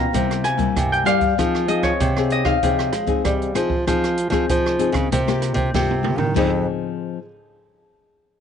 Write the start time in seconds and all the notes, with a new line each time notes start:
Already playing: F3 F5 G5 A#5
0.13 C3 G3 A#3 E4, kick, closed hi-hat
0.31 cross-stick, closed hi-hat
0.44 G#5, cross-stick, closed hi-hat
0.57 G3 A#3 E4, kick, closed hi-hat
0.76 G2 C3, kick, cross-stick, closed hi-hat
0.92 G5, closed hi-hat
1.05 G3 A#3 E4 F5, cross-stick, closed hi-hat
1.21 kick, closed hi-hat
1.38 F3 C4 D#4 G#4, kick, cross-stick, closed hi-hat
1.55 cross-stick
1.68 C4 D#4 G#4 D#5, closed hi-hat
1.83 C#5, kick, cross-stick, closed hi-hat
2.00 C3, kick, closed hi-hat
2.17 C4 D#4 G#4, cross-stick
2.30 D#5, closed hi-hat
2.45 C4 D#4 G#4 F5, kick, cross-stick
2.63 C3 F3 C4 D#4 G#4, kick, closed hi-hat
2.79 cross-stick
2.93 G#3, cross-stick, closed hi-hat
3.07 C4 D#4 G#4, kick, closed hi-hat
3.24 C3 G3, kick, cross-stick, closed hi-hat
3.42 closed hi-hat
3.54 F3 C4 D#4 G#4, cross-stick, closed hi-hat
3.70 kick
3.86 F3 C4 D#4 G#4, kick, cross-stick, closed hi-hat
4.04 cross-stick, closed hi-hat
4.17 closed hi-hat
4.30 F3 C4 D#4 G#4, kick, cross-stick, closed hi-hat
4.49 C3 F3, kick, closed hi-hat
4.66 cross-stick
4.79 C4 D#4 G#4, closed hi-hat
4.92 C#3, kick, cross-stick, closed hi-hat
5.11 C3 A#3 F4 G4, kick, closed hi-hat
5.27 A#3 F4 G4, cross-stick, closed hi-hat
5.42 cross-stick, closed hi-hat
5.54 C3, kick, closed hi-hat
5.74 G2 C3 A#3 F4 G4, kick, snare
5.91 high tom
6.03 A#3 F4 G4, mid tom
6.18 D#3, floor tom
6.34 F2 F3 C4 D#4 G#4, kick, crash